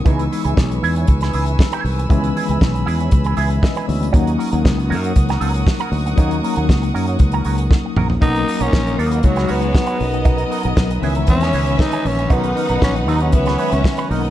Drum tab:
HH |xxox-xoxxxox-xox|xxox-xoxxxox-xox|xxox-xoxxxox-xox|xxox-xoxxxox----|
SD |----o----o--o---|----o-------o---|----o----o--o---|----o-------o---|
T2 |----------------|----------------|----------------|--------------o-|
FT |----------------|----------------|----------------|---------------o|
BD |o---o---o---o---|o---o---o---o---|o---o---o---o---|o---o---o---o---|

HH |xxox-xoxxxox-xox|xxox-xoxxxox-xox|xxox-xoxxxox-xox|
SD |----o----o--o---|----o----o--o---|----o----o--o---|
T2 |----------------|----------------|----------------|
FT |----------------|----------------|----------------|
BD |o---o---o---o---|o---o---o---o---|o---o---o---o---|